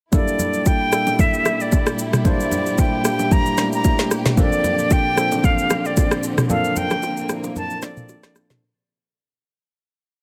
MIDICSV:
0, 0, Header, 1, 5, 480
1, 0, Start_track
1, 0, Tempo, 530973
1, 115, Time_signature, 4, 2, 24, 8
1, 9241, End_track
2, 0, Start_track
2, 0, Title_t, "Flute"
2, 0, Program_c, 0, 73
2, 125, Note_on_c, 0, 74, 96
2, 604, Note_on_c, 0, 79, 109
2, 617, Note_off_c, 0, 74, 0
2, 1087, Note_on_c, 0, 76, 103
2, 1100, Note_off_c, 0, 79, 0
2, 1461, Note_on_c, 0, 74, 85
2, 1475, Note_off_c, 0, 76, 0
2, 1802, Note_off_c, 0, 74, 0
2, 2051, Note_on_c, 0, 74, 87
2, 2526, Note_on_c, 0, 79, 99
2, 2539, Note_off_c, 0, 74, 0
2, 3004, Note_on_c, 0, 82, 117
2, 3018, Note_off_c, 0, 79, 0
2, 3371, Note_off_c, 0, 82, 0
2, 3376, Note_on_c, 0, 82, 91
2, 3695, Note_off_c, 0, 82, 0
2, 3967, Note_on_c, 0, 74, 97
2, 4451, Note_on_c, 0, 79, 110
2, 4464, Note_off_c, 0, 74, 0
2, 4927, Note_on_c, 0, 77, 100
2, 4941, Note_off_c, 0, 79, 0
2, 5299, Note_on_c, 0, 74, 84
2, 5313, Note_off_c, 0, 77, 0
2, 5641, Note_off_c, 0, 74, 0
2, 5882, Note_on_c, 0, 77, 100
2, 6122, Note_on_c, 0, 79, 120
2, 6135, Note_off_c, 0, 77, 0
2, 6598, Note_off_c, 0, 79, 0
2, 6844, Note_on_c, 0, 81, 113
2, 7082, Note_on_c, 0, 74, 98
2, 7096, Note_off_c, 0, 81, 0
2, 7558, Note_off_c, 0, 74, 0
2, 9241, End_track
3, 0, Start_track
3, 0, Title_t, "Tine electric piano"
3, 0, Program_c, 1, 4
3, 106, Note_on_c, 1, 55, 97
3, 111, Note_on_c, 1, 58, 89
3, 116, Note_on_c, 1, 62, 89
3, 121, Note_on_c, 1, 64, 91
3, 126, Note_on_c, 1, 69, 109
3, 289, Control_c, 1, 64, 127
3, 696, Note_off_c, 1, 55, 0
3, 698, Note_off_c, 1, 58, 0
3, 701, Note_off_c, 1, 62, 0
3, 703, Note_off_c, 1, 64, 0
3, 706, Note_off_c, 1, 69, 0
3, 827, Note_on_c, 1, 55, 73
3, 833, Note_on_c, 1, 58, 68
3, 839, Note_on_c, 1, 62, 64
3, 844, Note_on_c, 1, 64, 68
3, 849, Note_on_c, 1, 69, 82
3, 1604, Note_off_c, 1, 55, 0
3, 1607, Note_off_c, 1, 58, 0
3, 1609, Note_off_c, 1, 62, 0
3, 1612, Note_off_c, 1, 64, 0
3, 1615, Note_off_c, 1, 69, 0
3, 2026, Note_on_c, 1, 55, 102
3, 2031, Note_on_c, 1, 58, 90
3, 2035, Note_on_c, 1, 62, 94
3, 2042, Note_on_c, 1, 64, 89
3, 2047, Note_on_c, 1, 72, 112
3, 2616, Note_off_c, 1, 55, 0
3, 2619, Note_off_c, 1, 58, 0
3, 2620, Note_off_c, 1, 62, 0
3, 2624, Note_off_c, 1, 64, 0
3, 2626, Note_off_c, 1, 72, 0
3, 2746, Note_on_c, 1, 55, 73
3, 2752, Note_on_c, 1, 58, 67
3, 2758, Note_on_c, 1, 62, 70
3, 2762, Note_on_c, 1, 64, 64
3, 2768, Note_on_c, 1, 67, 80
3, 3144, Note_off_c, 1, 55, 0
3, 3147, Note_off_c, 1, 58, 0
3, 3150, Note_off_c, 1, 62, 0
3, 3152, Note_off_c, 1, 64, 0
3, 3155, Note_off_c, 1, 67, 0
3, 3226, Note_on_c, 1, 55, 73
3, 3231, Note_on_c, 1, 58, 65
3, 3236, Note_on_c, 1, 62, 67
3, 3241, Note_on_c, 1, 64, 67
3, 3246, Note_on_c, 1, 57, 82
3, 3816, Note_off_c, 1, 55, 0
3, 3818, Note_off_c, 1, 58, 0
3, 3821, Note_off_c, 1, 62, 0
3, 3823, Note_off_c, 1, 64, 0
3, 3826, Note_off_c, 1, 57, 0
3, 3944, Note_on_c, 1, 53, 97
3, 3949, Note_on_c, 1, 58, 92
3, 3954, Note_on_c, 1, 60, 91
3, 3960, Note_on_c, 1, 62, 89
3, 3965, Note_on_c, 1, 69, 110
3, 3967, Control_c, 1, 64, 0
3, 4120, Control_c, 1, 64, 127
3, 4535, Note_off_c, 1, 53, 0
3, 4538, Note_off_c, 1, 58, 0
3, 4540, Note_off_c, 1, 60, 0
3, 4543, Note_off_c, 1, 62, 0
3, 4545, Note_off_c, 1, 69, 0
3, 4664, Note_on_c, 1, 53, 75
3, 4668, Note_on_c, 1, 58, 66
3, 4674, Note_on_c, 1, 60, 70
3, 4678, Note_on_c, 1, 62, 69
3, 4684, Note_on_c, 1, 69, 81
3, 5442, Note_off_c, 1, 53, 0
3, 5444, Note_off_c, 1, 58, 0
3, 5447, Note_off_c, 1, 60, 0
3, 5449, Note_off_c, 1, 62, 0
3, 5452, Note_off_c, 1, 69, 0
3, 5864, Note_on_c, 1, 53, 96
3, 5870, Note_on_c, 1, 58, 93
3, 5873, Note_on_c, 1, 60, 86
3, 5880, Note_on_c, 1, 62, 94
3, 5884, Note_on_c, 1, 69, 105
3, 6455, Note_off_c, 1, 53, 0
3, 6458, Note_off_c, 1, 58, 0
3, 6459, Note_off_c, 1, 60, 0
3, 6463, Note_off_c, 1, 62, 0
3, 6465, Note_off_c, 1, 69, 0
3, 6584, Note_on_c, 1, 53, 75
3, 6591, Note_on_c, 1, 58, 68
3, 6595, Note_on_c, 1, 60, 65
3, 6602, Note_on_c, 1, 62, 64
3, 6605, Note_on_c, 1, 64, 78
3, 6983, Note_off_c, 1, 53, 0
3, 6986, Note_off_c, 1, 58, 0
3, 6988, Note_off_c, 1, 60, 0
3, 6992, Note_off_c, 1, 62, 0
3, 6993, Note_off_c, 1, 64, 0
3, 7066, Note_on_c, 1, 53, 72
3, 7071, Note_on_c, 1, 58, 64
3, 7076, Note_on_c, 1, 60, 69
3, 7082, Note_on_c, 1, 62, 66
3, 7088, Note_on_c, 1, 69, 80
3, 7656, Note_off_c, 1, 53, 0
3, 7659, Note_off_c, 1, 58, 0
3, 7661, Note_off_c, 1, 60, 0
3, 7664, Note_off_c, 1, 62, 0
3, 7667, Note_off_c, 1, 69, 0
3, 7807, Control_c, 1, 64, 0
3, 9241, End_track
4, 0, Start_track
4, 0, Title_t, "String section"
4, 0, Program_c, 2, 48
4, 114, Note_on_c, 2, 67, 82
4, 115, Note_on_c, 2, 46, 70
4, 115, Note_on_c, 2, 55, 77
4, 115, Note_on_c, 2, 64, 72
4, 3918, Note_off_c, 2, 64, 0
4, 3919, Note_off_c, 2, 55, 0
4, 3957, Note_on_c, 2, 50, 79
4, 3957, Note_on_c, 2, 60, 68
4, 5838, Note_off_c, 2, 67, 0
4, 5874, Note_on_c, 2, 58, 89
4, 7758, Note_off_c, 2, 46, 0
4, 7760, Note_off_c, 2, 50, 0
4, 7760, Note_off_c, 2, 60, 0
4, 7775, Note_off_c, 2, 58, 0
4, 9241, End_track
5, 0, Start_track
5, 0, Title_t, "Drums"
5, 114, Note_on_c, 9, 64, 77
5, 115, Note_on_c, 9, 36, 118
5, 115, Note_on_c, 9, 82, 67
5, 204, Note_off_c, 9, 64, 0
5, 205, Note_off_c, 9, 82, 0
5, 206, Note_off_c, 9, 36, 0
5, 251, Note_on_c, 9, 82, 46
5, 341, Note_off_c, 9, 82, 0
5, 354, Note_on_c, 9, 64, 71
5, 356, Note_on_c, 9, 82, 85
5, 444, Note_off_c, 9, 64, 0
5, 446, Note_off_c, 9, 82, 0
5, 485, Note_on_c, 9, 82, 49
5, 575, Note_off_c, 9, 82, 0
5, 594, Note_on_c, 9, 82, 74
5, 595, Note_on_c, 9, 60, 76
5, 597, Note_on_c, 9, 36, 102
5, 685, Note_off_c, 9, 82, 0
5, 686, Note_off_c, 9, 60, 0
5, 687, Note_off_c, 9, 36, 0
5, 834, Note_on_c, 9, 82, 95
5, 837, Note_on_c, 9, 37, 97
5, 925, Note_off_c, 9, 82, 0
5, 928, Note_off_c, 9, 37, 0
5, 965, Note_on_c, 9, 61, 67
5, 968, Note_on_c, 9, 82, 62
5, 1056, Note_off_c, 9, 61, 0
5, 1059, Note_off_c, 9, 82, 0
5, 1075, Note_on_c, 9, 64, 70
5, 1077, Note_on_c, 9, 36, 115
5, 1077, Note_on_c, 9, 82, 67
5, 1165, Note_off_c, 9, 64, 0
5, 1167, Note_off_c, 9, 36, 0
5, 1167, Note_off_c, 9, 82, 0
5, 1209, Note_on_c, 9, 82, 47
5, 1299, Note_off_c, 9, 82, 0
5, 1314, Note_on_c, 9, 61, 75
5, 1314, Note_on_c, 9, 82, 85
5, 1317, Note_on_c, 9, 37, 87
5, 1404, Note_off_c, 9, 61, 0
5, 1404, Note_off_c, 9, 82, 0
5, 1408, Note_off_c, 9, 37, 0
5, 1450, Note_on_c, 9, 82, 49
5, 1540, Note_off_c, 9, 82, 0
5, 1554, Note_on_c, 9, 82, 87
5, 1555, Note_on_c, 9, 60, 75
5, 1558, Note_on_c, 9, 36, 106
5, 1645, Note_off_c, 9, 82, 0
5, 1646, Note_off_c, 9, 60, 0
5, 1649, Note_off_c, 9, 36, 0
5, 1687, Note_on_c, 9, 37, 96
5, 1687, Note_on_c, 9, 82, 50
5, 1777, Note_off_c, 9, 82, 0
5, 1778, Note_off_c, 9, 37, 0
5, 1796, Note_on_c, 9, 82, 87
5, 1887, Note_off_c, 9, 82, 0
5, 1926, Note_on_c, 9, 60, 51
5, 1929, Note_on_c, 9, 37, 91
5, 1929, Note_on_c, 9, 45, 94
5, 1931, Note_on_c, 9, 82, 63
5, 2016, Note_off_c, 9, 60, 0
5, 2019, Note_off_c, 9, 37, 0
5, 2019, Note_off_c, 9, 45, 0
5, 2021, Note_off_c, 9, 82, 0
5, 2033, Note_on_c, 9, 64, 77
5, 2035, Note_on_c, 9, 36, 120
5, 2035, Note_on_c, 9, 82, 66
5, 2123, Note_off_c, 9, 64, 0
5, 2126, Note_off_c, 9, 36, 0
5, 2126, Note_off_c, 9, 82, 0
5, 2172, Note_on_c, 9, 82, 47
5, 2263, Note_off_c, 9, 82, 0
5, 2273, Note_on_c, 9, 64, 70
5, 2277, Note_on_c, 9, 82, 85
5, 2363, Note_off_c, 9, 64, 0
5, 2368, Note_off_c, 9, 82, 0
5, 2406, Note_on_c, 9, 82, 47
5, 2497, Note_off_c, 9, 82, 0
5, 2514, Note_on_c, 9, 82, 78
5, 2517, Note_on_c, 9, 36, 100
5, 2517, Note_on_c, 9, 60, 76
5, 2605, Note_off_c, 9, 82, 0
5, 2607, Note_off_c, 9, 36, 0
5, 2607, Note_off_c, 9, 60, 0
5, 2754, Note_on_c, 9, 82, 96
5, 2757, Note_on_c, 9, 37, 98
5, 2844, Note_off_c, 9, 82, 0
5, 2847, Note_off_c, 9, 37, 0
5, 2885, Note_on_c, 9, 61, 69
5, 2888, Note_on_c, 9, 82, 59
5, 2976, Note_off_c, 9, 61, 0
5, 2979, Note_off_c, 9, 82, 0
5, 2996, Note_on_c, 9, 36, 118
5, 2996, Note_on_c, 9, 64, 73
5, 2998, Note_on_c, 9, 82, 64
5, 3086, Note_off_c, 9, 64, 0
5, 3087, Note_off_c, 9, 36, 0
5, 3088, Note_off_c, 9, 82, 0
5, 3128, Note_on_c, 9, 82, 47
5, 3218, Note_off_c, 9, 82, 0
5, 3232, Note_on_c, 9, 82, 83
5, 3234, Note_on_c, 9, 61, 78
5, 3236, Note_on_c, 9, 37, 90
5, 3236, Note_on_c, 9, 38, 65
5, 3323, Note_off_c, 9, 82, 0
5, 3324, Note_off_c, 9, 61, 0
5, 3326, Note_off_c, 9, 37, 0
5, 3326, Note_off_c, 9, 38, 0
5, 3368, Note_on_c, 9, 82, 51
5, 3459, Note_off_c, 9, 82, 0
5, 3473, Note_on_c, 9, 82, 84
5, 3475, Note_on_c, 9, 60, 76
5, 3477, Note_on_c, 9, 36, 106
5, 3564, Note_off_c, 9, 82, 0
5, 3566, Note_off_c, 9, 60, 0
5, 3568, Note_off_c, 9, 36, 0
5, 3606, Note_on_c, 9, 82, 50
5, 3607, Note_on_c, 9, 38, 69
5, 3697, Note_off_c, 9, 38, 0
5, 3697, Note_off_c, 9, 82, 0
5, 3716, Note_on_c, 9, 82, 85
5, 3717, Note_on_c, 9, 37, 88
5, 3806, Note_off_c, 9, 82, 0
5, 3808, Note_off_c, 9, 37, 0
5, 3847, Note_on_c, 9, 38, 68
5, 3847, Note_on_c, 9, 60, 50
5, 3848, Note_on_c, 9, 45, 91
5, 3850, Note_on_c, 9, 82, 65
5, 3938, Note_off_c, 9, 38, 0
5, 3938, Note_off_c, 9, 45, 0
5, 3938, Note_off_c, 9, 60, 0
5, 3940, Note_off_c, 9, 82, 0
5, 3953, Note_on_c, 9, 64, 74
5, 3955, Note_on_c, 9, 36, 121
5, 3955, Note_on_c, 9, 82, 67
5, 4044, Note_off_c, 9, 64, 0
5, 4045, Note_off_c, 9, 36, 0
5, 4045, Note_off_c, 9, 82, 0
5, 4092, Note_on_c, 9, 82, 49
5, 4182, Note_off_c, 9, 82, 0
5, 4196, Note_on_c, 9, 64, 70
5, 4196, Note_on_c, 9, 82, 83
5, 4286, Note_off_c, 9, 64, 0
5, 4287, Note_off_c, 9, 82, 0
5, 4326, Note_on_c, 9, 82, 49
5, 4417, Note_off_c, 9, 82, 0
5, 4434, Note_on_c, 9, 82, 72
5, 4437, Note_on_c, 9, 36, 98
5, 4437, Note_on_c, 9, 60, 73
5, 4525, Note_off_c, 9, 82, 0
5, 4527, Note_off_c, 9, 36, 0
5, 4528, Note_off_c, 9, 60, 0
5, 4675, Note_on_c, 9, 82, 95
5, 4678, Note_on_c, 9, 37, 91
5, 4766, Note_off_c, 9, 82, 0
5, 4769, Note_off_c, 9, 37, 0
5, 4808, Note_on_c, 9, 61, 68
5, 4808, Note_on_c, 9, 82, 61
5, 4899, Note_off_c, 9, 61, 0
5, 4899, Note_off_c, 9, 82, 0
5, 4916, Note_on_c, 9, 36, 120
5, 4918, Note_on_c, 9, 82, 65
5, 4919, Note_on_c, 9, 64, 73
5, 5007, Note_off_c, 9, 36, 0
5, 5008, Note_off_c, 9, 82, 0
5, 5009, Note_off_c, 9, 64, 0
5, 5047, Note_on_c, 9, 82, 47
5, 5138, Note_off_c, 9, 82, 0
5, 5153, Note_on_c, 9, 82, 88
5, 5157, Note_on_c, 9, 37, 95
5, 5158, Note_on_c, 9, 61, 77
5, 5244, Note_off_c, 9, 82, 0
5, 5247, Note_off_c, 9, 37, 0
5, 5249, Note_off_c, 9, 61, 0
5, 5289, Note_on_c, 9, 82, 52
5, 5380, Note_off_c, 9, 82, 0
5, 5394, Note_on_c, 9, 82, 83
5, 5398, Note_on_c, 9, 36, 104
5, 5399, Note_on_c, 9, 60, 75
5, 5484, Note_off_c, 9, 82, 0
5, 5488, Note_off_c, 9, 36, 0
5, 5489, Note_off_c, 9, 60, 0
5, 5526, Note_on_c, 9, 82, 48
5, 5527, Note_on_c, 9, 37, 98
5, 5617, Note_off_c, 9, 37, 0
5, 5617, Note_off_c, 9, 82, 0
5, 5635, Note_on_c, 9, 82, 84
5, 5726, Note_off_c, 9, 82, 0
5, 5766, Note_on_c, 9, 37, 93
5, 5767, Note_on_c, 9, 45, 94
5, 5768, Note_on_c, 9, 60, 50
5, 5769, Note_on_c, 9, 82, 65
5, 5857, Note_off_c, 9, 37, 0
5, 5857, Note_off_c, 9, 45, 0
5, 5859, Note_off_c, 9, 60, 0
5, 5859, Note_off_c, 9, 82, 0
5, 5873, Note_on_c, 9, 82, 70
5, 5875, Note_on_c, 9, 64, 73
5, 5964, Note_off_c, 9, 82, 0
5, 5966, Note_off_c, 9, 64, 0
5, 6007, Note_on_c, 9, 82, 49
5, 6098, Note_off_c, 9, 82, 0
5, 6112, Note_on_c, 9, 82, 85
5, 6116, Note_on_c, 9, 60, 50
5, 6116, Note_on_c, 9, 64, 70
5, 6203, Note_off_c, 9, 82, 0
5, 6206, Note_off_c, 9, 60, 0
5, 6206, Note_off_c, 9, 64, 0
5, 6242, Note_on_c, 9, 82, 45
5, 6247, Note_on_c, 9, 37, 86
5, 6249, Note_on_c, 9, 61, 72
5, 6332, Note_off_c, 9, 82, 0
5, 6337, Note_off_c, 9, 37, 0
5, 6339, Note_off_c, 9, 61, 0
5, 6350, Note_on_c, 9, 82, 75
5, 6357, Note_on_c, 9, 60, 74
5, 6441, Note_off_c, 9, 82, 0
5, 6448, Note_off_c, 9, 60, 0
5, 6482, Note_on_c, 9, 82, 48
5, 6573, Note_off_c, 9, 82, 0
5, 6591, Note_on_c, 9, 82, 94
5, 6594, Note_on_c, 9, 37, 95
5, 6681, Note_off_c, 9, 82, 0
5, 6684, Note_off_c, 9, 37, 0
5, 6723, Note_on_c, 9, 82, 62
5, 6726, Note_on_c, 9, 61, 69
5, 6814, Note_off_c, 9, 82, 0
5, 6816, Note_off_c, 9, 61, 0
5, 6834, Note_on_c, 9, 82, 66
5, 6835, Note_on_c, 9, 64, 74
5, 6924, Note_off_c, 9, 82, 0
5, 6925, Note_off_c, 9, 64, 0
5, 6965, Note_on_c, 9, 82, 50
5, 7055, Note_off_c, 9, 82, 0
5, 7070, Note_on_c, 9, 82, 90
5, 7074, Note_on_c, 9, 37, 93
5, 7074, Note_on_c, 9, 38, 65
5, 7074, Note_on_c, 9, 61, 76
5, 7161, Note_off_c, 9, 82, 0
5, 7164, Note_off_c, 9, 37, 0
5, 7164, Note_off_c, 9, 38, 0
5, 7165, Note_off_c, 9, 61, 0
5, 7204, Note_on_c, 9, 45, 68
5, 7206, Note_on_c, 9, 82, 50
5, 7294, Note_off_c, 9, 45, 0
5, 7296, Note_off_c, 9, 82, 0
5, 7311, Note_on_c, 9, 82, 81
5, 7316, Note_on_c, 9, 60, 79
5, 7402, Note_off_c, 9, 82, 0
5, 7406, Note_off_c, 9, 60, 0
5, 7443, Note_on_c, 9, 82, 51
5, 7444, Note_on_c, 9, 37, 94
5, 7444, Note_on_c, 9, 38, 67
5, 7533, Note_off_c, 9, 82, 0
5, 7534, Note_off_c, 9, 37, 0
5, 7534, Note_off_c, 9, 38, 0
5, 7553, Note_on_c, 9, 82, 85
5, 7555, Note_on_c, 9, 37, 85
5, 7644, Note_off_c, 9, 82, 0
5, 7645, Note_off_c, 9, 37, 0
5, 7686, Note_on_c, 9, 38, 65
5, 7686, Note_on_c, 9, 45, 94
5, 7687, Note_on_c, 9, 60, 50
5, 7688, Note_on_c, 9, 82, 64
5, 7776, Note_off_c, 9, 38, 0
5, 7776, Note_off_c, 9, 45, 0
5, 7777, Note_off_c, 9, 60, 0
5, 7778, Note_off_c, 9, 82, 0
5, 9241, End_track
0, 0, End_of_file